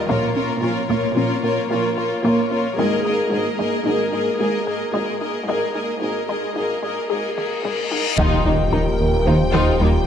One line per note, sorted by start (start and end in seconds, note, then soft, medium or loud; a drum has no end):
0.07 0.53 A#1 medium
0.07 0.53 A#2 medium
0.07 0.24 A#2 medium
0.07 0.34 A#3 medium
0.07 0.25 A#3 medium
0.07 0.34 F4 medium
0.07 0.32 A#4 medium
0.07 0.33 C#5 medium
0.07 taiko medium
0.34 0.51 A#2 medium
0.34 0.61 A#3 medium
0.34 0.52 C#4 medium
0.34 0.61 F4 medium
0.34 0.60 A#4 medium
0.34 0.59 C#5 medium
0.60 1.07 A#1 medium
0.60 1.07 A#2 medium
0.60 0.78 A#2 medium
0.60 0.87 A#3 soft
0.60 0.79 C#4 medium
0.60 0.87 F4 soft
0.60 0.87 A#4 medium
0.60 0.87 C#5 medium
0.88 1.05 A#2 medium
0.88 1.14 A#3 soft
0.88 1.06 A#3 medium
0.88 1.14 F4 soft
0.88 1.15 A#4 soft
0.88 1.15 C#5 soft
0.88 taiko medium
1.15 1.61 A#1 medium
1.15 1.33 A#2 medium
1.15 1.62 A#2 medium
1.15 1.41 A#3 medium
1.15 1.33 C#4 medium
1.15 1.41 F4 medium
1.15 1.42 A#4 medium
1.15 1.42 C#5 medium
1.42 1.59 A#2 medium
1.42 1.68 A#3 medium
1.42 1.60 A#3 medium
1.42 1.68 F4 soft
1.42 1.68 A#4 medium
1.42 1.69 C#5 medium
1.69 2.15 A#1 medium
1.69 2.16 A#2 medium
1.69 1.94 A#3 medium
1.69 1.86 A#3 medium
1.69 1.94 F4 medium
1.69 1.87 F4 medium
1.69 1.96 A#4 medium
1.69 1.96 C#5 medium
1.95 2.14 A#2 medium
1.95 2.23 A#3 medium
1.95 2.22 F4 medium
1.95 2.14 A#4 medium
1.95 2.22 A#4 soft
1.95 2.23 C#5 soft
2.23 2.70 A#1 medium
2.23 2.69 A#2 medium
2.23 2.40 A#2 medium
2.23 2.48 A#3 medium
2.23 2.41 A#3 medium
2.23 2.48 F4 medium
2.23 2.50 A#4 soft
2.23 2.50 C#5 medium
2.23 taiko medium
2.49 2.67 A#2 soft
2.49 2.76 A#3 soft
2.49 2.67 C#4 soft
2.49 2.77 F4 soft
2.49 2.76 A#4 soft
2.49 2.78 C#5 soft
2.77 3.23 G#1 medium
2.77 2.94 G#2 medium
2.77 3.23 G#2 medium
2.77 2.95 G#3 medium
2.77 3.02 A#3 medium
2.77 3.02 G#4 medium
2.77 3.04 A#4 medium
2.77 3.04 D#5 medium
2.77 taiko medium
3.03 3.21 G#2 medium
3.03 3.28 A#3 medium
3.03 3.21 D#4 soft
3.03 3.28 G#4 medium
3.03 3.31 A#4 soft
3.03 3.31 D#5 soft
3.29 3.77 G#1 medium
3.29 3.77 G#2 medium
3.29 3.48 G#2 medium
3.29 3.56 A#3 soft
3.29 3.49 D#4 soft
3.29 3.56 G#4 soft
3.29 3.59 A#4 soft
3.29 3.59 D#5 soft
3.57 3.75 G#2 medium
3.57 3.75 G#3 medium
3.57 3.83 A#3 soft
3.57 3.83 G#4 soft
3.57 3.85 A#4 soft
3.57 3.85 D#5 soft
3.57 taiko medium
3.84 4.31 G#1 medium
3.84 4.31 G#2 medium
3.84 4.02 G#2 medium
3.84 4.10 A#3 medium
3.84 4.02 D#4 medium
3.84 4.10 G#4 medium
3.84 4.12 A#4 soft
3.84 4.12 D#5 soft
4.11 4.29 G#2 medium
4.11 4.29 G#3 medium
4.11 4.37 A#3 soft
4.11 4.37 G#4 soft
4.11 4.40 A#4 soft
4.11 4.40 D#5 soft
4.38 4.85 G#1 medium
4.38 4.85 G#2 medium
4.38 4.56 G#3 medium
4.38 4.64 A#3 soft
4.38 4.64 G#4 soft
4.38 4.57 G#4 medium
4.38 4.67 A#4 soft
4.38 4.67 D#5 soft
4.65 4.83 G#2 soft
4.65 4.91 A#3 soft
4.65 4.91 G#4 soft
4.65 4.83 A#4 medium
4.65 4.93 A#4 soft
4.65 4.92 D#5 soft
4.92 5.40 G#1 soft
4.92 5.39 G#2 medium
4.92 5.10 G#2 medium
4.92 5.10 G#3 medium
4.92 5.19 A#3 soft
4.92 5.19 G#4 soft
4.92 5.20 A#4 soft
4.92 5.20 D#5 soft
4.92 taiko medium
5.20 5.38 G#2 soft
5.20 5.46 A#3 soft
5.20 5.37 D#4 medium
5.20 5.46 G#4 soft
5.20 5.46 A#4 soft
5.20 5.47 D#5 soft
5.47 5.93 G#1 medium
5.47 5.93 G#2 medium
5.47 5.64 G#2 medium
5.47 5.65 G#3 medium
5.47 5.72 A#3 soft
5.47 5.73 G#4 soft
5.47 5.74 A#4 soft
5.47 5.74 D#5 soft
5.47 taiko medium
5.47 reverse cymbal medium
5.74 5.91 G#2 medium
5.74 5.99 A#3 soft
5.74 5.91 D#4 soft
5.74 5.99 G#4 soft
5.74 6.00 A#4 soft
5.74 6.00 D#5 soft
6.00 6.47 G#1 medium
6.00 6.47 G#2 medium
6.00 6.19 G#2 medium
6.00 6.27 A#3 soft
6.00 6.18 D#4 soft
6.00 6.27 G#4 soft
6.00 6.28 A#4 soft
6.00 6.27 D#5 soft
6.28 6.46 G#2 medium
6.28 6.45 G#3 medium
6.28 6.54 A#3 soft
6.28 6.54 G#4 soft
6.28 6.54 A#4 soft
6.28 6.55 D#5 soft
6.28 taiko medium
6.55 7.01 G#1 medium
6.55 6.72 G#2 medium
6.55 7.02 G#2 soft
6.55 6.82 A#3 soft
6.55 6.72 D#4 soft
6.55 6.82 G#4 soft
6.55 6.82 A#4 soft
6.55 6.82 D#5 soft
6.83 6.99 G#2 medium
6.83 6.99 G#3 medium
6.83 7.09 A#3 soft
6.83 7.08 G#4 soft
6.83 7.08 A#4 soft
6.83 7.08 D#5 soft
7.09 7.55 G#1 soft
7.09 7.55 G#2 soft
7.09 7.27 G#3 medium
7.09 7.36 A#3 soft
7.09 7.36 G#4 soft
7.09 7.26 G#4 medium
7.09 7.36 A#4 soft
7.09 7.36 D#5 soft
7.37 7.53 G#2 medium
7.37 7.64 A#3 soft
7.37 7.64 G#4 soft
7.37 7.64 A#4 soft
7.37 7.54 A#4 soft
7.37 7.64 D#5 soft
7.37 taiko mid medium
7.64 8.09 G#1 soft
7.64 7.80 G#2 medium
7.64 8.10 G#2 medium
7.64 7.81 G#3 medium
7.64 7.90 A#3 soft
7.64 7.90 G#4 soft
7.64 7.90 A#4 soft
7.64 7.90 D#5 soft
7.64 taiko low-mid medium
7.91 8.07 G#2 medium
7.91 8.18 A#3 soft
7.91 8.08 D#4 medium
7.91 8.18 G#4 soft
7.91 8.18 A#4 soft
7.91 8.18 D#5 soft
7.91 taiko low medium
8.17 10.07 D#1 medium
8.17 8.34 D#2 medium
8.17 8.26 D#2 medium
8.17 8.27 D#3 medium
8.17 8.35 D#3 medium
8.17 10.07 F3 medium
8.17 8.43 D#4 medium
8.17 8.44 F4 medium
8.17 10.07 G4 medium
8.17 8.68 D#5 medium
8.17 10.07 G5 medium
8.17 taiko medium
8.17 impact medium
8.45 8.53 D#2 soft
8.45 8.62 D#2 medium
8.45 8.54 D#3 soft
8.45 8.62 G3 medium
8.45 8.53 A#3 soft
8.45 8.53 D#4 soft
8.72 8.88 D#2 medium
8.72 8.80 D#2 soft
8.72 8.80 D#3 soft
8.72 8.80 D#4 soft
8.72 8.89 D#4 medium
8.72 8.82 D#4 soft
8.72 9.27 A#4 medium
9.00 9.16 D#2 medium
9.26 9.34 D#2 soft
9.26 9.34 D#3 soft
9.26 9.43 D#3 medium
9.26 9.43 A#3 medium
9.26 9.34 D#4 soft
9.26 9.35 F4 soft
9.26 9.83 C5 medium
9.53 9.61 D#2 medium
9.53 9.71 D#2 medium
9.53 9.61 D#3 medium
9.53 9.70 D#3 medium
9.53 9.78 D#4 medium
9.53 9.79 F4 medium
9.79 9.88 D#2 soft
9.79 9.98 D#2 medium
9.79 9.87 D#3 soft
9.79 9.97 G3 medium
9.79 9.90 A#3 soft
9.79 9.89 D#4 soft
9.79 10.07 A#4 medium